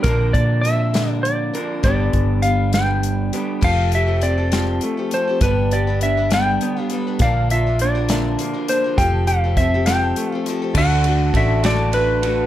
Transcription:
0.03 fingered electric bass A#1, steel-string acoustic guitar A#2 D3 F3 A#3 D4 A#4, electric slide guitar A#4, kick, closed hi-hat
0.33 fingered electric bass A#2, electric slide guitar D5, kick, closed hi-hat
0.61 steel-string acoustic guitar F3 A#3 D4, electric slide guitar E5, closed hi-hat
0.66 steel-string acoustic guitar A#4
0.94 steel-string acoustic guitar A#2 D3 F3 A#3 D4 A#4, snare, closed hi-hat
1.10 electric slide guitar D5
1.23 electric slide guitar D5, closed hi-hat
1.53 clean electric guitar A#2 D3, steel-string acoustic guitar F3 A#3 D4 A#4, closed hi-hat
1.83 fingered electric bass G1, steel-string acoustic guitar G2 D3 G3 B3 D4 B4, electric slide guitar D5, kick, closed hi-hat
1.88 clean electric guitar G4
2.13 fingered electric bass G1, kick, closed hi-hat
2.42 steel-string acoustic guitar G3 B3 D4 B4, electric slide guitar F5, closed hi-hat
2.73 steel-string acoustic guitar G2 D3 G3 B3 D4 B4, electric slide guitar G5, snare, closed hi-hat
3.03 closed hi-hat
3.33 clean electric guitar G2 D3 G4, steel-string acoustic guitar G3 B3 D4 B4, closed hi-hat
3.61 fingered electric bass F1, steel-string acoustic guitar F3 C4 G4 A4, electric slide guitar F5, kick, crash
3.92 clean electric guitar G4, electric slide guitar E5, closed hi-hat
4.06 steel-string acoustic guitar C4 G4 A4
4.21 steel-string acoustic guitar F3 C4 G4 A4, electric slide guitar D5, closed hi-hat
4.38 steel-string acoustic guitar C4 G4 A4
4.52 steel-string acoustic guitar F3 C4 G4 A4, snare, closed hi-hat
4.81 clean electric guitar A3, closed hi-hat
4.97 steel-string acoustic guitar C4 G4 A4
5.11 steel-string acoustic guitar F3 C4 G4 A4, electric slide guitar C5, closed hi-hat
5.27 steel-string acoustic guitar C4 G4 A4
5.41 fingered electric bass G1, steel-string acoustic guitar G2 D3 G3 B3 D4 B4, electric slide guitar B4, kick, closed hi-hat
5.71 clean electric guitar G4, electric slide guitar D5, closed hi-hat
5.87 steel-string acoustic guitar G3 B3 D4 B4
6.01 steel-string acoustic guitar G3 B3 D4 B4, electric slide guitar E5, closed hi-hat
6.17 steel-string acoustic guitar G3 B3 D4 B4
6.31 steel-string acoustic guitar G2 D3 G3 B3 D4 B4, electric slide guitar G5, snare, closed hi-hat
6.61 clean electric guitar B3, closed hi-hat
6.77 steel-string acoustic guitar G3 B3 D4 B4
6.81 electric slide guitar F5
6.90 steel-string acoustic guitar G3 B3 D4 B4, closed hi-hat
7.07 steel-string acoustic guitar G3 B3 D4 B4
7.19 fingered electric bass A#1, steel-string acoustic guitar A#2 D3 F3 A#3, grand piano F4 A#4 D5, electric slide guitar F5, kick, closed hi-hat
7.23 steel-string acoustic guitar D4 A#4
7.50 clean electric guitar F4, electric slide guitar E5, closed hi-hat
7.66 steel-string acoustic guitar F3 A#3 D4 A#4
7.79 steel-string acoustic guitar F3 A#3 D4 A#4, electric slide guitar D5, closed hi-hat
7.95 steel-string acoustic guitar F3 A#3 D4 A#4
8.08 steel-string acoustic guitar A#2 D3 F3 A#3 D4 A#4, grand piano F4 A#4 E5, snare, closed hi-hat
8.39 clean electric guitar A#3, closed hi-hat
8.54 steel-string acoustic guitar F3 A#3 D4 A#4
8.68 clean electric guitar D3, steel-string acoustic guitar F3 A#3 D4 A#4, electric slide guitar C5, closed hi-hat
8.84 steel-string acoustic guitar F3 A#3 D4 A#4
8.97 fingered electric bass F1, steel-string acoustic guitar F3 C4 G4, grand piano G4 A4 F5, electric slide guitar G5, kick, closed hi-hat
9.01 steel-string acoustic guitar A4
9.27 clean electric guitar G4, electric slide guitar F5, closed hi-hat
9.44 steel-string acoustic guitar C4 G4 A4
9.57 steel-string acoustic guitar F3 C4, electric slide guitar E5, kick, closed hi-hat
9.61 steel-string acoustic guitar G4 A4
9.74 steel-string acoustic guitar C4 G4 A4
9.86 steel-string acoustic guitar F3 C4 G4 A4, grand piano G4 A4 F5, electric slide guitar G5, snare, closed hi-hat
10.16 clean electric guitar A3, closed hi-hat
10.32 steel-string acoustic guitar C4 G4 A4, electric slide guitar F5
10.46 steel-string acoustic guitar F3 C4 G4 A4, closed hi-hat
10.62 steel-string acoustic guitar C4 G4 A4
10.73 fingered electric bass D2, steel-string acoustic guitar A3, grand piano F#4 A4 D5, kick, crash
10.78 steel-string acoustic guitar D3 D4 F#4 A4, electric slide guitar F#5
11.04 clean electric guitar A3, steel-string acoustic guitar A4, ride
11.08 steel-string acoustic guitar D4 F#4
11.34 fingered electric bass A1, clean electric guitar D3, steel-string acoustic guitar A3 D4 F#4 A4, electric slide guitar E5, kick, ride
11.62 steel-string acoustic guitar D3 A3 D4 F#4 A4, grand piano F#4 A4 D5, snare, ride
11.66 electric slide guitar D5
11.92 steel-string acoustic guitar A3 D4 F#4 A4, electric slide guitar B4, ride
12.23 clean electric guitar A3, steel-string acoustic guitar D4 F#4 A4, ride

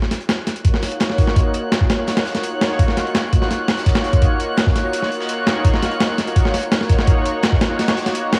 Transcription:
Already playing: synth texture F#6
0.02 snare
0.11 snare, closed hi-hat
0.21 closed hi-hat
0.29 snare, closed hi-hat
0.47 snare, closed hi-hat
0.56 analog synth pad A#3 D#4 F4 F#4 C#5, closed hi-hat
0.65 kick, closed hi-hat
0.74 snare
0.82 analog synth pad A#3 D#4 F4 F#4 C#5, snare, closed hi-hat, open hi-hat
0.92 closed hi-hat
1.00 snare, closed hi-hat
1.10 snare
1.18 kick, snare, closed hi-hat
1.27 snare
1.36 kick, closed hi-hat
1.54 closed hi-hat
1.72 snare, closed hi-hat
1.81 kick, snare
1.90 snare, closed hi-hat
1.99 analog synth pad A#3 D#4 F4 F#4 C#5
2.07 snare, closed hi-hat
2.17 snare, closed hi-hat
2.25 analog synth pad A#3 D#4 F4 F#4 C#5, snare, closed hi-hat
2.35 snare, closed hi-hat
2.43 closed hi-hat
2.61 snare, closed hi-hat
2.71 snare
2.79 kick, closed hi-hat
2.88 snare
2.97 snare, closed hi-hat
3.07 closed hi-hat
3.15 snare, closed hi-hat
3.33 kick, closed hi-hat
3.42 analog synth pad A#3 D#4 F4 F#4 C#5, snare, closed hi-hat
3.50 snare, closed hi-hat
3.68 analog synth pad A#3 D#4 F4 F#4 C#5, snare, closed hi-hat
3.77 snare, closed hi-hat
3.86 kick, snare, closed hi-hat
3.95 snare, closed hi-hat
4.04 snare, closed hi-hat
4.13 kick, closed hi-hat
4.22 kick, closed hi-hat
4.40 closed hi-hat
4.57 snare, closed hi-hat
4.66 kick, snare
4.75 snare, closed hi-hat
4.84 analog synth pad A#3 D#4 F4 F#4 C#5
4.93 closed hi-hat
5.02 snare
5.11 analog synth pad A#3 D#4 F4 F#4 C#5, closed hi-hat
5.20 snare
5.29 closed hi-hat
5.47 snare, closed hi-hat
5.65 kick, closed hi-hat
5.74 snare
5.83 snare, closed hi-hat
5.91 closed hi-hat
6.00 snare, closed hi-hat
6.18 snare, closed hi-hat
6.27 analog synth pad A#3 D#4 F4 F#4 C#5, closed hi-hat
6.36 kick, closed hi-hat
6.45 snare
6.54 analog synth pad A#3 D#4 F4 F#4 C#5, snare, closed hi-hat, open hi-hat
6.63 closed hi-hat
6.72 snare, closed hi-hat
6.81 snare
6.90 kick, snare, closed hi-hat
6.99 snare
7.07 kick, closed hi-hat
7.26 closed hi-hat
7.43 snare, closed hi-hat
7.52 kick, snare
7.61 snare, closed hi-hat
7.70 analog synth pad A#3 D#4 F4 F#4 C#5
7.79 snare, closed hi-hat
7.88 snare, closed hi-hat
7.97 analog synth pad A#3 D#4 F4 F#4 C#5, snare, closed hi-hat
8.06 snare, closed hi-hat
8.15 closed hi-hat
8.33 snare, closed hi-hat

